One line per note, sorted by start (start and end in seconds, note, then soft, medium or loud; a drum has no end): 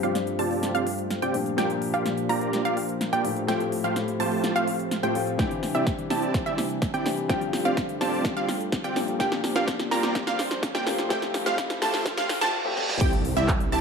0.00 1.31 G2 medium
0.00 1.56 G2 medium
0.00 1.31 F3 medium
0.00 1.56 G3 medium
0.00 1.56 A3 medium
0.00 1.31 C4 medium
0.00 0.16 C4 medium
0.00 1.32 D4 medium
0.00 1.56 F4 medium
0.00 0.16 F4 medium
0.00 1.32 G4 loud
0.00 0.16 G4 medium
0.00 9.16 C5 medium
0.00 0.16 D5 medium
0.00 0.16 F5 medium
0.00 closed hi-hat soft
0.15 snare medium
0.15 closed hi-hat medium
0.27 closed hi-hat soft
0.39 0.72 C4 medium
0.39 0.72 F4 medium
0.39 0.72 G4 medium
0.39 0.72 D5 medium
0.39 0.72 A5 medium
0.39 open hi-hat loud
0.51 open hi-hat medium
0.63 snare medium
0.63 closed hi-hat medium
0.75 0.87 C4 medium
0.75 0.87 F4 medium
0.75 0.87 G4 medium
0.75 0.87 D5 medium
0.75 0.87 F5 loud
0.75 closed hi-hat soft
0.87 open hi-hat loud
0.99 closed hi-hat soft
1.10 snare medium
1.10 closed hi-hat medium
1.22 1.35 C4 medium
1.22 1.35 F4 medium
1.22 1.35 G4 medium
1.22 1.35 D5 medium
1.22 1.35 G5 medium
1.22 closed hi-hat soft
1.34 1.55 A#2 medium
1.34 1.55 F3 medium
1.34 1.55 C4 medium
1.34 1.55 D4 medium
1.34 1.56 G4 medium
1.34 open hi-hat loud
1.46 closed hi-hat soft
1.57 3.21 A#2 loud
1.57 3.47 A#2 medium
1.57 3.22 F3 medium
1.57 5.35 F3 medium
1.57 3.22 A#3 medium
1.57 1.71 A#3 medium
1.57 3.47 D4 medium
1.57 3.22 D4 medium
1.57 1.71 F4 medium
1.57 1.71 G4 medium
1.57 5.35 G4 medium
1.57 3.22 G4 loud
1.57 1.71 D5 medium
1.57 1.71 G5 loud
1.57 snare medium
1.57 closed hi-hat medium
1.70 closed hi-hat soft
1.82 open hi-hat loud
1.94 2.06 A#3 medium
1.94 2.06 F4 medium
1.94 2.06 G4 medium
1.94 2.06 D5 medium
1.94 2.06 F5 medium
1.94 closed hi-hat soft
2.06 snare medium
2.06 closed hi-hat medium
2.18 closed hi-hat soft
2.29 2.62 A#3 medium
2.29 2.62 F4 medium
2.29 2.62 G4 medium
2.29 2.62 D5 medium
2.29 2.62 A#5 medium
2.29 open hi-hat loud
2.41 closed hi-hat soft
2.53 snare medium
2.53 closed hi-hat medium
2.65 2.78 A#3 medium
2.65 2.78 F4 medium
2.65 2.78 G4 medium
2.65 2.78 D5 medium
2.65 2.78 F5 loud
2.65 closed hi-hat soft
2.77 open hi-hat loud
2.89 closed hi-hat soft
3.01 snare medium
3.01 closed hi-hat medium
3.13 3.25 A#3 medium
3.13 3.25 F4 medium
3.13 3.25 G4 medium
3.13 3.25 D5 medium
3.13 3.25 G5 medium
3.13 closed hi-hat soft
3.24 3.45 A2 medium
3.24 3.45 F3 medium
3.24 3.46 A#3 medium
3.24 3.46 D4 medium
3.24 3.46 G4 medium
3.24 open hi-hat loud
3.37 closed hi-hat soft
3.47 5.00 A2 loud
3.47 5.37 A2 medium
3.47 5.01 F3 medium
3.47 5.01 A3 medium
3.47 3.61 A3 medium
3.47 5.37 C4 medium
3.47 5.01 C4 medium
3.47 3.61 F4 medium
3.47 3.61 G4 medium
3.47 5.02 G4 loud
3.47 3.61 C5 medium
3.47 3.61 G5 loud
3.47 snare medium
3.47 closed hi-hat medium
3.60 closed hi-hat soft
3.72 open hi-hat loud
3.84 3.97 A3 medium
3.84 3.97 F4 medium
3.84 3.97 G4 medium
3.84 3.97 C5 medium
3.84 3.97 F5 medium
3.84 closed hi-hat soft
3.96 snare medium
3.96 closed hi-hat medium
4.08 closed hi-hat soft
4.20 4.53 A3 medium
4.20 4.53 F4 medium
4.20 4.53 G4 medium
4.20 4.53 C5 medium
4.20 4.53 A5 medium
4.20 open hi-hat loud
4.32 open hi-hat medium
4.44 snare medium
4.44 closed hi-hat medium
4.56 4.68 A3 medium
4.56 4.68 F4 medium
4.56 4.68 G4 medium
4.56 4.68 C5 medium
4.56 4.68 F5 loud
4.56 closed hi-hat soft
4.68 open hi-hat loud
4.80 closed hi-hat soft
4.91 snare medium
4.91 closed hi-hat medium
5.03 5.12 A2 medium
5.03 5.12 F3 medium
5.03 5.12 A3 medium
5.03 5.16 A3 medium
5.03 5.13 C4 medium
5.03 5.16 F4 medium
5.03 5.16 G4 medium
5.03 5.13 G4 medium
5.03 5.16 C5 medium
5.03 5.16 G5 medium
5.03 closed hi-hat soft
5.15 5.36 F3 medium
5.15 5.36 A3 medium
5.15 5.36 C4 medium
5.15 5.36 F4 loud
5.15 open hi-hat loud
5.27 closed hi-hat soft
5.38 7.28 C3 medium
5.38 7.02 E3 loud
5.38 11.06 G3 medium
5.38 7.03 C4 medium
5.38 5.52 C4 medium
5.38 7.28 D4 medium
5.38 7.03 D4 medium
5.38 7.28 E4 medium
5.38 5.52 E4 medium
5.38 5.52 G4 medium
5.38 7.03 G4 loud
5.38 5.52 D5 medium
5.38 5.52 G5 loud
5.38 kick loud
5.38 snare medium
5.38 closed hi-hat medium
5.38 riser medium
5.51 closed hi-hat soft
5.63 snare medium
5.63 open hi-hat loud
5.75 5.87 C4 medium
5.75 5.87 E4 medium
5.75 5.87 G4 medium
5.75 5.87 D5 medium
5.75 5.87 E5 medium
5.75 closed hi-hat soft
5.87 kick loud
5.87 snare medium
5.87 closed hi-hat medium
5.99 closed hi-hat soft
6.10 6.43 C4 medium
6.10 6.43 E4 medium
6.10 6.43 G4 medium
6.10 6.43 D5 medium
6.10 6.43 A5 medium
6.10 snare medium
6.10 open hi-hat loud
6.22 closed hi-hat soft
6.34 kick loud
6.34 snare medium
6.34 closed hi-hat medium
6.46 6.59 C4 medium
6.46 6.59 E4 medium
6.46 6.59 G4 medium
6.46 6.59 D5 medium
6.46 6.59 E5 loud
6.46 closed hi-hat soft
6.58 snare medium
6.58 open hi-hat loud
6.70 closed hi-hat soft
6.82 kick loud
6.82 snare medium
6.82 closed hi-hat medium
6.94 7.06 C4 medium
6.94 7.06 E4 medium
6.94 7.06 G4 medium
6.94 7.06 D5 medium
6.94 7.06 G5 medium
6.94 closed hi-hat soft
7.05 7.26 E3 medium
7.05 7.27 C4 medium
7.05 7.27 D4 medium
7.05 7.27 G4 medium
7.05 snare medium
7.05 open hi-hat loud
7.18 closed hi-hat soft
7.28 8.93 G2 medium
7.28 9.18 G2 medium
7.28 8.93 F3 medium
7.28 9.18 A3 medium
7.28 8.93 C4 medium
7.28 7.42 C4 medium
7.28 8.94 D4 medium
7.28 9.18 F4 medium
7.28 7.42 F4 medium
7.28 7.42 G4 medium
7.28 8.94 G4 loud
7.28 7.42 D5 medium
7.28 7.42 G5 loud
7.28 kick loud
7.28 snare medium
7.28 closed hi-hat medium
7.41 closed hi-hat soft
7.53 snare medium
7.53 open hi-hat loud
7.65 7.78 C4 medium
7.65 7.78 F4 medium
7.65 7.78 G4 medium
7.65 7.78 D5 medium
7.65 7.78 F5 medium
7.65 closed hi-hat soft
7.77 kick loud
7.77 snare medium
7.77 closed hi-hat medium
7.89 closed hi-hat soft
8.01 8.34 C4 medium
8.01 8.34 F4 medium
8.01 8.34 G4 medium
8.01 8.34 D5 medium
8.01 8.34 A5 medium
8.01 snare medium
8.01 open hi-hat loud
8.13 open hi-hat medium
8.25 kick loud
8.25 snare medium
8.25 closed hi-hat medium
8.37 8.49 C4 loud
8.37 8.49 F4 medium
8.37 8.49 G4 medium
8.37 8.49 D5 medium
8.37 8.49 F5 loud
8.37 closed hi-hat soft
8.49 snare medium
8.49 open hi-hat loud
8.61 closed hi-hat soft
8.72 kick loud
8.72 snare medium
8.72 closed hi-hat medium
8.84 8.97 C4 medium
8.84 8.97 F4 medium
8.84 8.97 G4 medium
8.84 8.97 D5 medium
8.84 8.97 G5 medium
8.84 closed hi-hat soft
8.96 9.17 A#2 medium
8.96 9.17 F3 medium
8.96 9.17 C4 medium
8.96 9.17 D4 medium
8.96 9.17 G4 medium
8.96 snare medium
8.96 open hi-hat loud
9.08 closed hi-hat soft
9.19 10.83 A#2 loud
9.19 11.09 A#2 medium
9.19 10.83 F3 medium
9.19 12.50 F3 medium
9.19 10.84 A#3 medium
9.19 9.33 A#3 medium
9.19 11.09 D4 medium
9.19 10.84 D4 medium
9.19 9.32 F4 medium
9.19 9.32 G4 medium
9.19 10.84 G4 loud
9.19 12.50 C5 loud
9.19 9.32 D5 medium
9.19 9.32 G5 loud
9.19 kick loud
9.19 snare medium
9.19 closed hi-hat medium
9.32 snare medium
9.32 closed hi-hat soft
9.44 snare medium
9.44 open hi-hat loud
9.56 9.68 A#3 medium
9.56 9.68 F4 medium
9.56 9.68 G4 medium
9.56 9.68 D5 medium
9.56 9.68 F5 medium
9.56 snare medium
9.56 closed hi-hat soft
9.68 kick loud
9.68 snare loud
9.68 closed hi-hat medium
9.79 snare medium
9.79 closed hi-hat soft
9.91 10.24 A#3 medium
9.91 10.24 F4 medium
9.91 10.24 G4 medium
9.91 10.24 D5 medium
9.91 10.24 A#5 medium
9.91 snare loud
9.91 open hi-hat loud
10.03 snare medium
10.03 closed hi-hat soft
10.15 kick loud
10.15 snare loud
10.15 closed hi-hat medium
10.27 10.40 A#3 medium
10.27 10.40 F4 medium
10.27 10.40 G4 medium
10.27 10.40 D5 medium
10.27 10.40 F5 loud
10.27 snare medium
10.27 closed hi-hat soft
10.39 snare loud
10.39 open hi-hat loud
10.51 snare medium
10.51 closed hi-hat soft
10.63 kick loud
10.63 snare loud
10.63 closed hi-hat medium
10.75 10.87 A#3 medium
10.75 10.87 F4 medium
10.75 10.87 G4 medium
10.75 10.87 D5 medium
10.75 10.87 G5 medium
10.75 snare medium
10.75 closed hi-hat soft
10.86 11.07 A2 medium
10.86 11.07 F3 medium
10.86 11.08 A#3 medium
10.86 11.08 D4 medium
10.86 11.08 G4 medium
10.86 snare loud
10.86 open hi-hat loud
10.99 snare medium
10.99 closed hi-hat soft
11.09 12.62 A2 loud
11.09 12.52 A2 medium
11.09 12.62 F3 medium
11.09 12.52 G3 medium
11.09 12.63 A3 medium
11.09 11.23 A3 loud
11.09 12.52 C4 medium
11.09 12.63 C4 medium
11.09 11.23 F4 medium
11.09 11.23 G4 medium
11.09 12.63 G4 loud
11.09 11.23 C5 medium
11.09 11.23 G5 loud
11.09 kick loud
11.09 snare loud
11.09 closed hi-hat medium
11.22 snare medium
11.22 closed hi-hat soft
11.34 snare loud
11.34 open hi-hat loud
11.46 11.59 A3 medium
11.46 11.59 F4 medium
11.46 11.59 G4 medium
11.46 11.59 C5 medium
11.46 11.59 F5 medium
11.46 snare medium
11.46 closed hi-hat soft
11.58 kick loud
11.58 snare loud
11.58 closed hi-hat medium
11.70 snare loud
11.70 closed hi-hat soft
11.82 12.15 A3 medium
11.82 12.15 F4 medium
11.82 12.15 G4 medium
11.82 12.15 C5 medium
11.82 12.15 A5 medium
11.82 snare loud
11.82 open hi-hat loud
11.94 snare medium
11.94 open hi-hat medium
12.06 kick loud
12.06 snare loud
12.06 closed hi-hat medium
12.06 reverse cymbal medium
12.17 12.30 A3 medium
12.17 12.30 F4 medium
12.17 12.30 G4 medium
12.17 12.30 C5 medium
12.17 12.30 F5 loud
12.17 snare loud
12.17 closed hi-hat soft
12.29 snare loud
12.29 open hi-hat loud
12.41 12.53 A3 loud
12.41 12.53 F4 medium
12.41 12.53 G4 medium
12.41 12.53 C5 medium
12.41 12.53 A5 loud
12.41 snare loud
12.41 closed hi-hat soft
12.65 12.74 A2 medium
12.65 12.74 F3 medium
12.65 12.74 A3 medium
12.65 12.74 C4 medium
12.65 12.75 G4 loud
12.76 12.98 F3 loud
12.76 12.98 A3 medium
12.76 12.98 C4 medium
12.76 12.98 F4 loud
12.76 snare medium
12.89 snare medium
13.01 13.34 C2 loud
13.01 13.81 C3 medium
13.01 13.81 C4 medium
13.01 13.13 C4 medium
13.01 13.81 D4 medium
13.01 13.81 E4 medium
13.01 13.13 E4 medium
13.01 13.81 G4 medium
13.01 13.13 G4 medium
13.01 13.13 D5 medium
13.01 13.13 G5 loud
13.01 kick loud
13.01 closed hi-hat medium
13.01 crash loud
13.01 impact medium
13.13 closed hi-hat soft
13.25 open hi-hat loud
13.37 13.70 C2 loud
13.37 13.49 C4 medium
13.37 13.49 E4 medium
13.37 13.49 G4 medium
13.37 13.49 D5 medium
13.37 13.49 E5 medium
13.37 closed hi-hat soft
13.48 kick loud
13.48 clap loud
13.48 closed hi-hat medium
13.60 closed hi-hat soft
13.72 13.81 C2 medium
13.72 13.81 C4 medium
13.72 13.81 E4 medium
13.72 13.81 G4 medium
13.72 13.81 D5 medium
13.72 13.81 A5 medium
13.72 open hi-hat loud